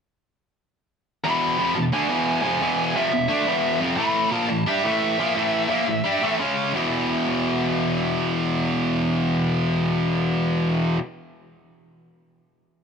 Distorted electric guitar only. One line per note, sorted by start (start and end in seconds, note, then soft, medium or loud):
1.24 1.57 E2 loud
1.24 1.58 B2 loud
1.24 1.59 E3 loud
1.58 1.75 F2 medium
1.58 1.75 C3 loud
1.58 1.75 F3 loud
1.76 1.89 E2 medium
1.76 1.90 B2 medium
1.93 2.09 D3 loud
1.93 2.09 A3 loud
1.93 2.10 D4 loud
2.09 2.42 E2 loud
2.09 2.43 B2 medium
2.09 2.43 E3 loud
2.43 2.60 F2 medium
2.43 2.60 C3 loud
2.43 2.61 F3 loud
2.61 2.94 E2 loud
2.61 2.95 B2 loud
2.61 2.95 E3 loud
2.95 3.12 F2 medium
2.95 3.12 C3 loud
2.95 3.12 F3 loud
3.13 3.26 E2 medium
3.13 3.26 B2 medium
3.28 3.45 D3 loud
3.28 3.46 A3 loud
3.28 3.46 D4 loud
3.45 3.80 E2 loud
3.45 3.80 B2 loud
3.45 3.80 E3 loud
3.80 3.97 F2 loud
3.80 3.97 C3 loud
3.80 3.98 F3 loud
3.98 4.30 A2 loud
3.98 4.32 E3 loud
3.98 4.32 A3 loud
4.31 4.48 A#2 loud
4.31 4.49 F3 loud
4.31 4.49 A#3 loud
4.49 4.63 A2 medium
4.49 4.63 E3 medium
4.66 4.83 G3 medium
4.66 4.83 D4 loud
4.66 4.84 G4 loud
4.84 5.17 A2 loud
4.84 5.18 E3 loud
4.84 5.18 A3 medium
5.19 5.35 A#2 medium
5.19 5.35 F3 loud
5.19 5.35 A#3 loud
5.36 5.68 A2 medium
5.36 5.69 E3 loud
5.36 5.70 A3 loud
5.69 5.86 A#2 loud
5.69 5.86 F3 loud
5.69 5.86 A#3 loud
5.88 6.01 A2 medium
5.88 6.01 E3 medium
6.04 6.21 G3 loud
6.04 6.21 D4 loud
6.04 6.21 G4 loud
6.22 6.38 A2 medium
6.22 6.38 E3 medium
6.22 6.39 A3 loud
6.39 6.73 C#3 loud
6.39 6.73 G#3 loud
6.39 6.73 C#4 loud
6.73 10.97 E2 loud
6.73 10.98 B2 loud
6.73 10.99 E3 loud